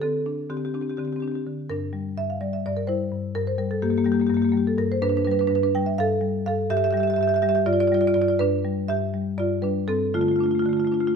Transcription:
0.02 D3 C4 A4
0.26 D4
0.50 D3 C4 G4
0.57 C4 G4
0.65 C4 G4
0.74 C4 D4 G4
0.81 C4 G4
0.90 C4 G4
0.97 D3 C4 G4
1.05 C4 G4
1.13 C4 G4
1.20 C4 D4 G4
1.28 G4
1.32 C4 G4
1.47 D3
1.70 G2 D4 A#4
1.93 G3
2.18 G2 E5
2.30 F5
2.41 G3 D5
2.53 E5
2.66 G2 D5
2.77 A#4
2.87 G3 E4 C5
3.12 G2
3.35 G2 A#4
3.47 C5
3.58 G3 A#4
3.71 A4
3.82 G2 A#3 G4
3.90 A#3 G4
3.97 A#3 G4
4.04 G3 A#3 G4
4.12 A#3 G4
4.20 A#3 G4
4.27 G2 A#3 G4
4.34 A#3 G4
4.42 A#3 G4
4.49 A#3 G4
4.53 G3 G4
4.67 A4
4.78 G2 A#4
4.92 C5
5.02 G2 D4 B4
5.09 D4 B4
5.17 D4 B4
5.25 G3 D4 B4
5.31 D4 B4
5.39 D4 B4
5.47 G2 D4 B4
5.55 D4 B4
5.63 D4 B4
5.75 G3 G5
5.86 E5
5.98 G2 A4 F5
6.21 G3
6.46 G2 A4 F5
6.70 G2 G4 E5
6.77 G4 E5
6.84 G4 E5
6.91 G3 G4 E5
6.97 G4 E5
7.03 E5
7.07 G4 E5
7.14 G4 E5
7.19 G2 G4 E5
7.28 G4 E5
7.34 G4 E5
7.42 G3 G4 E5
7.49 G4 E5
7.55 G4 E5
7.66 G2 F4 D5
7.73 F4 D5
7.80 F4 D5
7.87 F4 D5
7.92 G3 F4 D5
8.01 F4 D5
8.07 F4 D5
8.14 G2 F4 D5
8.21 F4 D5
8.28 F4 D5
8.39 G2 D4 B4
8.64 G3
8.88 G2 G4 E5
9.14 G3
9.38 G2 F4 D5
9.62 G3 D4 B4
9.88 G2 C4 A4
10.14 D3 A3 F4
10.21 A3 F4
10.28 A3 F4
10.36 A3 F4
10.40 D4 F4
10.46 A3
10.51 A3 F4
10.59 A3 F4
10.66 D3 A3 F4
10.73 F4
10.77 A3 F4
10.84 A3 F4
10.92 A3 D4 F4
11.00 A3 F4
11.07 A3 F4

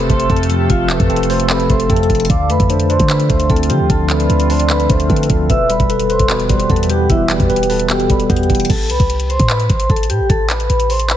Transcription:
Already playing: C3 A3 F4 A4 C5
0.10 F1 A3 C5 C6, kick, closed hi-hat
0.20 closed hi-hat
0.30 F2 C4 A4 A5, kick, closed hi-hat
0.36 closed hi-hat
0.43 closed hi-hat
0.50 F3 G4 G5, closed hi-hat
0.70 F1 C3 F4 F5, kick, closed hi-hat
0.90 A3 A4 B4 A5, clap, closed hi-hat
1.00 F2, kick, closed hi-hat
1.10 F1 C4, closed hi-hat
1.16 closed hi-hat
1.23 closed hi-hat
1.30 C5 C6, open hi-hat
1.40 closed hi-hat
1.50 C3 A4 B4 B5, clap, closed hi-hat
1.60 closed hi-hat
1.70 F1 A3 C5 C6, kick, closed hi-hat
1.80 closed hi-hat
1.90 F2 C4 A4 A5, kick, closed hi-hat
1.96 closed hi-hat
2.03 closed hi-hat
2.10 F1 F3, kick, closed hi-hat
2.15 closed hi-hat
2.20 closed hi-hat
2.25 closed hi-hat
2.30 D2 D3 C4 F4 D5 F5 D6, kick, closed hi-hat
2.50 F2 A3 B4 B5, closed hi-hat
2.60 F2, kick, closed hi-hat
2.70 D4 C5, closed hi-hat
2.80 closed hi-hat
2.90 D4 C5 C6, closed hi-hat
3.00 D3, kick, closed hi-hat
3.10 D3 B4 B5, clap, closed hi-hat
3.20 closed hi-hat
3.30 D2 A3 C5 C6, kick, closed hi-hat
3.40 closed hi-hat
3.50 D2 C4 A4 A5, kick, closed hi-hat
3.56 closed hi-hat
3.63 closed hi-hat
3.70 D3 F3 G4 G5, closed hi-hat
3.80 D2
3.90 D2 D3 A4 A5, kick, closed hi-hat
4.10 A3 B4 D5 B5, clap, closed hi-hat
4.20 closed hi-hat
4.30 D2 D4, closed hi-hat
4.40 closed hi-hat
4.50 D4 C5 C6, open hi-hat
4.60 closed hi-hat
4.70 D3 B4 B5, clap, closed hi-hat
4.80 closed hi-hat
4.89 D2 A3 C5 C6, kick, closed hi-hat
5.00 closed hi-hat
5.10 D3 C4 A4 B4 A5, kick, closed hi-hat
5.16 closed hi-hat
5.23 closed hi-hat
5.30 D2 F3 A4, kick, closed hi-hat
5.50 E1 B2 E3 B3 G4 B4 E5 E6, kick, closed hi-hat
5.70 G3 B4 B5, closed hi-hat
5.80 E1, kick, closed hi-hat
5.90 A4 B4, closed hi-hat
6.00 closed hi-hat
6.10 B4 C5 C6, closed hi-hat
6.19 E1, kick, closed hi-hat
6.30 B2 B4 B5, clap, closed hi-hat
6.40 closed hi-hat
6.49 E1 G3 C5 C6, kick, closed hi-hat
6.60 closed hi-hat
6.70 E2 B3 A4 A5, kick, closed hi-hat
6.76 closed hi-hat
6.83 closed hi-hat
6.90 E3 G4 G5, closed hi-hat
7.10 E1 B2 E4 E5, kick, closed hi-hat
7.30 G3 G4 B4 G5, clap, closed hi-hat
7.40 E2, kick, closed hi-hat
7.50 E1 B4, closed hi-hat
7.56 closed hi-hat
7.63 closed hi-hat
7.70 A4 B4 A5, open hi-hat
7.80 closed hi-hat
7.89 B2 G4 A4 G5, clap, closed hi-hat
8.00 closed hi-hat
8.09 E1 G3 B4 B5, kick, closed hi-hat
8.20 closed hi-hat
8.30 E2 B3 G4 G5, kick, closed hi-hat
8.36 closed hi-hat
8.43 closed hi-hat
8.50 E1 E3, kick, closed hi-hat
8.55 closed hi-hat
8.60 closed hi-hat
8.65 closed hi-hat
8.69 A1 A4 A5, kick, closed hi-hat, crash
8.90 C2 B4 B5, closed hi-hat
9.00 C2, kick, closed hi-hat
9.10 closed hi-hat
9.20 closed hi-hat
9.29 C5 C6, closed hi-hat
9.40 A2, kick, closed hi-hat
9.50 B4 B5, clap, closed hi-hat
9.60 closed hi-hat
9.70 A1 C5 C6, kick, closed hi-hat
9.80 closed hi-hat
9.90 A1 A4 A5, kick, closed hi-hat
9.96 closed hi-hat
10.03 closed hi-hat
10.10 A2 G4 G5, closed hi-hat
10.20 A1
10.30 A1 A4 A5, kick, closed hi-hat
10.49 B4 B5, clap, closed hi-hat
10.60 closed hi-hat
10.70 A1, closed hi-hat
10.80 closed hi-hat
10.90 C5 C6, open hi-hat
11.00 closed hi-hat
11.10 B4 B5, clap, closed hi-hat

